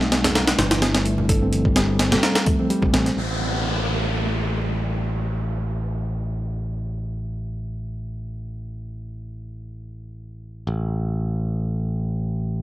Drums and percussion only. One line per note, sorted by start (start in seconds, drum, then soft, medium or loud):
0.01 snare medium
0.12 snare loud
0.12 closed hi-hat medium
0.24 snare loud
0.24 closed hi-hat medium
0.24 low conga medium
0.35 snare loud
0.35 closed hi-hat medium
0.47 snare loud
0.47 closed hi-hat medium
0.58 snare loud
0.58 closed hi-hat medium
0.58 high conga medium
0.58 low conga medium
0.71 snare loud
0.71 closed hi-hat medium
0.71 high conga medium
0.82 snare loud
0.82 closed hi-hat medium
0.95 snare loud
0.95 closed hi-hat medium
1.06 closed hi-hat medium
1.18 low conga medium
1.29 kick loud
1.29 closed hi-hat medium
1.53 closed hi-hat medium
1.53 high conga medium
1.65 kick medium
1.76 snare loud
1.76 closed hi-hat medium
1.99 snare loud
1.99 closed hi-hat medium
2.12 snare loud
2.12 closed hi-hat medium
2.12 low conga medium
2.23 snare loud
2.23 closed hi-hat medium
2.35 snare loud
2.35 closed hi-hat medium
2.46 kick loud
2.46 closed hi-hat medium
2.46 high conga medium
2.59 high conga medium
2.70 closed hi-hat medium
2.82 kick medium
2.82 low conga medium
2.94 snare loud
2.94 closed hi-hat medium
3.06 snare soft
3.06 closed hi-hat medium